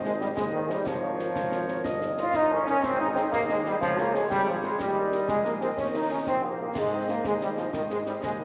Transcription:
Already playing: G#1 C5 D#5
0.04 G#3 D#4 G#4 C5 D#5, snare
0.20 G3 D#4 G#4 C5 D#5, snare
0.36 D#2 G#3 C5 D#5, concert bass drum, snare
0.52 D#3 D#4 G#4 C5 D#5
0.69 G3 D#4 G#4 C5 D#5, snare
0.86 G#1 F3 A#4 C#5, concert bass drum, snare
1.03 F4 A#4 C#5
1.19 F4 A#4 C#5, snare
1.36 G#1, concert bass drum, snare
1.52 F4 A#4 C#5, snare
1.68 F4 A#4 C#5, snare
1.84 G1 A#4 D#5, concert bass drum, snare
2.01 D#4 A#4 C#5 D#5, snare
2.17 D#4 F4 A#4 C#5 D#5, snare
2.33 G1 D#4 A#4 D#5, concert bass drum, snare
2.51 C#4 D#4 A#4 C#5 D#5
2.66 C#4 D#4 A#4 C#5 D#5, snare
2.82 G#1 C4 G#4 D#5, concert bass drum, snare, crash
3.00 D#4 G#4 C5 G#5
3.15 C4 D#4 G#4 C5 G#5, snare
3.32 D#2 A#3, concert bass drum, snare
3.49 G#3 D#4 G#4 C5 G#5, snare
3.65 G3 D#4 G#4 C5 G#5, snare
3.80 C#2 F3 G#4 C#5, concert bass drum, snare
3.98 A#3 F4 G#4 C#5 G#5, snare
4.14 G#3 F4 G#4 C#5 G#5, snare
4.29 G#1 G3, concert bass drum, snare
4.47 F3 F4 G#4 C#5 G#5
4.63 G#3 F4 G#4 C#5 G#5, snare
4.79 D#2 G3 A#4 D#5, concert bass drum, snare
4.96 D#4 G4 A#4 D#5
5.12 D#4 G4 A#4 D#5, snare
5.28 A#1 G#3, concert bass drum, snare
5.45 A#3 D#4 G4 A#4 D#5, snare
5.61 C4 D#4 G4 A#4 D#5, snare
5.77 D#2 C#4, concert bass drum, snare
5.94 D#4 G4 A#4 D#5
6.09 C#4 D#4 G4 A#4 D#5
6.27 A#1 C4, concert bass drum, snare
6.43 A#3 D#4 G4 A#4 D#5
6.60 A#3 D#4 G4 A#4 D#5
6.75 G#2 G#3 C5 D#5, concert bass drum, snare, crash
6.92 C4 D#4 C5 D#5
7.08 A#3 D#4 C5 D#5, snare
7.24 D#2 G#3 C5 D#5, concert bass drum, snare
7.40 G3 D#4 C5 D#5, snare
7.57 F3 D#4 C5 D#5, snare
7.73 G#2 D#3 C5 D#5, concert bass drum, snare
7.90 G#3 D#4 C5 D#5, snare
8.06 G3 D#4 C5 D#5, snare
8.23 D#2 G#3 C5 D#5, concert bass drum, snare
8.40 D#3 D#4 C5 D#5

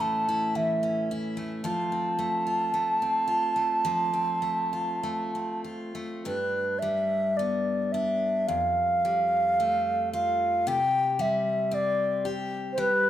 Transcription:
Already playing: A2 E3 C#4 E4
0.00 A3 A5
0.29 E4
0.55 E3 E5
0.83 C#4
1.11 E4
1.37 A3
1.64 F3 F4 A5
1.92 C4
2.19 A3
2.47 F4
2.74 A3
3.02 C4
3.28 F4
3.56 A3
3.85 F3 F4
4.13 C4
4.42 A3
4.73 F4
5.03 A3
5.35 C4
5.64 F4
5.95 A3
6.25 G2 D4 B4
6.79 G3 E5
7.37 B3 D5
7.92 D4 E5
8.47 F2 F5
9.05 G3
9.60 A3
10.13 F4 F5
10.67 C3 G4 G5
11.19 G3 E5
11.71 C4 D5
12.25 G4
12.73 C5
12.78 G3 B4

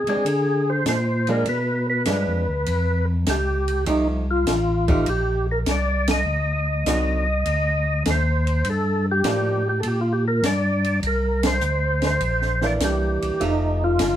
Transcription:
0.07 C3 G#3 C4 D4 G#4, ride
0.25 D3, ride
0.70 C5
0.85 A#2 C5, snare, hi-hat pedal, ride
1.27 F3 G#3 D4 A#4, ride
1.46 B2 B4, ride
1.90 B4
2.05 G2 F3 G#3 D4, snare, hi-hat pedal, ride
2.27 F2
2.48 D2
2.66 F2, ride
3.26 C#2 G4, snare, hi-hat pedal, ride
3.68 ride
3.86 C2 F3 A3 D#4 G4, ride
4.31 F4
4.47 A1, snare, hi-hat pedal, ride
4.88 F3 A3 D#4 F4 G4, kick, ride
5.06 A#1 G4, ride
5.51 A#4
5.66 C2, snare, hi-hat pedal, ride
5.71 D5
6.08 D#5, snare, ride
6.26 D2
6.85 C2 D3 C4 D#4 F#4, snare, hi-hat pedal, ride
7.46 D2, ride
8.05 D#2, snare, hi-hat pedal, ride
8.10 C5
8.47 ride
8.65 G2, ride
8.70 A4
9.11 G4
9.24 A2 F3 A#3 D4, snare, hi-hat pedal, ride
9.69 G4
9.80 A#2 A4, ride
9.88 G4
10.01 F4
10.13 G4
10.28 A#4
10.42 G2 D5, snare, hi-hat pedal, ride
10.84 ride
11.03 C2, ride
11.07 A#4
11.43 C5, snare, ride
11.61 D2, hi-hat pedal
12.02 snare, ride
12.07 C5
12.21 A#1, ride
12.42 snare
12.61 E3 A#3 D4, snare
12.66 D5
12.79 C2, snare, hi-hat pedal, ride
12.84 G4
13.22 C2, ride
13.40 F1 F3 A3 D#4 G4, ride
13.84 F4
13.99 G1, snare, hi-hat pedal, ride

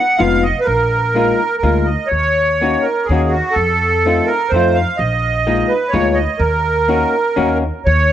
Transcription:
Already playing: F#5
0.18 F1 G#3 B3 D#4 F4 F5
0.43 D#5
0.60 B4
0.65 A#1 A#4
1.15 G#3 A#3 D#4 F4
1.58 A#4
1.63 D2 G#3 A#3 D#4 F4
1.85 D#5
2.07 C#5
2.11 D#2
2.61 A#3 C#4 D#4 F#4
2.81 A#4
3.05 G#4
3.09 D#2 A#3 C#4 D#4 F#4
3.29 F#4
3.51 A4
3.56 F2
4.06 A3 C4 D#4 F4
4.25 A#4
4.49 F2 C5
4.54 A3 C4 D#4 F4
4.74 F5
4.97 A#1 D#5
5.47 G#3 A#3 D#4 F4
5.69 B4
5.89 C#5
5.93 D2 G#3 A#3 D#4 F4
6.15 D#5
6.39 D#2 A#4
6.88 A#3 C#4 D#4 F#4
7.36 D#2 A#3 C#4 D#4 F#4
7.86 D#2 C#5

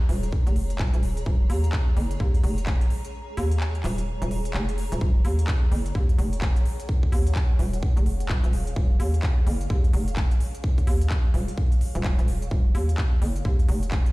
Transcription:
Already playing: G#4 C#5 A#5
0.09 D#1, open hi-hat
0.23 closed hi-hat
0.33 kick
0.47 F1, closed hi-hat
0.56 open hi-hat
0.70 closed hi-hat
0.79 D#1, kick, clap
0.94 D#1, closed hi-hat
1.03 open hi-hat
1.17 closed hi-hat
1.26 D#1, kick
1.50 D#2, open hi-hat
1.64 closed hi-hat
1.73 kick, clap
1.97 F#1, open hi-hat
2.11 closed hi-hat
2.20 D#2, kick
2.34 closed hi-hat
2.44 F1, open hi-hat
2.58 closed hi-hat
2.66 kick, clap
2.81 closed hi-hat
2.90 open hi-hat
3.05 closed hi-hat
3.37 D#2, open hi-hat
3.51 closed hi-hat
3.60 clap
3.75 closed hi-hat
3.83 D#1, clap, open hi-hat
3.98 closed hi-hat
4.22 D#1, closed hi-hat
4.31 open hi-hat
4.45 closed hi-hat
4.54 F1, clap
4.69 closed hi-hat
4.78 open hi-hat
4.92 D#1, closed hi-hat
5.01 D#1, kick
5.25 D#2, open hi-hat
5.39 closed hi-hat
5.48 kick, clap
5.72 F#1, open hi-hat
5.86 closed hi-hat
5.95 D#2, kick
6.09 F#5, closed hi-hat
6.18 F1, open hi-hat
6.33 closed hi-hat
6.42 kick, clap
6.56 closed hi-hat
6.66 open hi-hat
6.80 closed hi-hat
6.89 kick
7.03 kick
7.12 D#2, open hi-hat
7.27 F5, closed hi-hat
7.35 kick, clap
7.59 D#1, open hi-hat
7.73 closed hi-hat
7.83 kick
7.97 F1, closed hi-hat
8.06 open hi-hat
8.20 closed hi-hat
8.29 D#1, kick, clap
8.44 D#1, closed hi-hat
8.53 open hi-hat
8.67 closed hi-hat
8.76 D#1, kick
9.00 D#2, open hi-hat
9.14 closed hi-hat
9.23 kick, clap
9.47 F#1, open hi-hat
9.61 closed hi-hat
9.70 D#2, kick
9.84 closed hi-hat
9.93 F1, open hi-hat
10.08 closed hi-hat
10.16 kick, clap
10.31 closed hi-hat
10.40 open hi-hat
10.55 closed hi-hat
10.64 kick
10.78 kick, closed hi-hat
10.87 D#2, open hi-hat
11.02 closed hi-hat
11.10 kick, clap
11.34 D#1, open hi-hat
11.48 closed hi-hat
11.58 kick
11.72 closed hi-hat
11.81 open hi-hat
11.95 D#1, closed hi-hat
12.04 kick, clap
12.19 D#1, closed hi-hat
12.28 open hi-hat
12.42 closed hi-hat
12.51 D#1, kick
12.75 D#2, open hi-hat
12.89 closed hi-hat
12.98 kick, clap
13.22 F#1, open hi-hat
13.36 closed hi-hat
13.45 D#2, kick
13.59 closed hi-hat
13.69 F1, open hi-hat
13.83 closed hi-hat
13.91 kick, clap
14.06 closed hi-hat

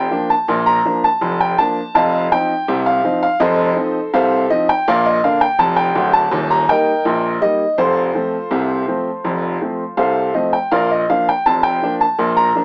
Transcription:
Already playing: G5
0.11 F3 A#3 D4
0.30 A5
0.48 A#1 A#2
0.66 A#5
0.85 F3 A#3 D4
1.04 A5
1.21 F1 F2
1.41 G5
1.58 F3 A#3 D4 A5
1.95 F1 F2 D#5 F5 A5
2.32 F3 C4 D#4 G5
2.68 C2 C3
2.86 F5
3.04 F3 C4 D#4
3.23 F5
3.40 F1 F2 A4 C5 D#5
3.76 F3 C4 D#4
4.13 C2 C3 A4 C5 F5
4.50 F3 C4 D#4 D#5
4.69 G5
4.88 A#1 A#2 A#4 D5 F5
5.06 D#5
5.24 D3 A#3 D4 F5
5.41 G5
5.59 F1 F2 A5
5.76 G5
5.95 D1 D2
6.13 A5
6.31 D#1 D#2
6.50 A#5
6.69 G3 A#3 D#4 A#4 D#5 G5
7.05 A#1 A#2
7.41 G3 A#3 D#4 D#5
7.78 F1 F2 F4 A4 C5
8.15 F3 A3 C4
8.51 C2 C3
8.88 F3 A3 C4
9.24 F1 F2
9.62 F3 A3 C4
9.97 C2 C3 A4 C5 F5
10.34 F3 A3 C4 D#5
10.53 G5
10.71 A#1 A#2 A#4 D5 F5
10.91 D#5
11.10 F3 A#3 D4 F5
11.29 G5
11.46 F1 F2 A5
11.63 G5
11.82 F3 A#3 D4
12.01 A5
12.19 A#1 A#2
12.37 A#5
12.55 F3 A#3 D4

